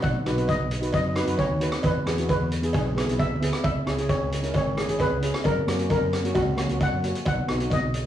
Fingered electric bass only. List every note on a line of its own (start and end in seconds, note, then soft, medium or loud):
0.03 0.13 B1 medium
0.26 0.56 B1 medium
0.60 0.90 B1 medium
0.94 1.24 F#2 medium
1.27 1.47 F#2 medium
1.50 1.70 D#2 medium
1.84 1.94 E2 medium
2.06 2.37 E2 medium
2.40 2.71 E2 medium
2.74 3.05 B1 medium
3.08 3.28 B1 medium
3.31 3.51 D2 medium
3.64 3.74 C#2 medium
3.87 4.17 C#2 medium
4.20 4.51 C#2 medium
4.54 4.85 G#1 medium
4.88 5.09 G#1 medium
5.10 5.31 C#2 medium
5.45 5.55 F#2 medium
5.67 5.98 F#2 medium
6.01 6.32 F#2 medium
6.35 6.66 C#2 medium
6.70 6.90 C#2 medium
6.92 7.12 F#2 medium
7.26 7.36 B1 medium
7.49 7.79 B1 medium
7.83 8.06 B1 medium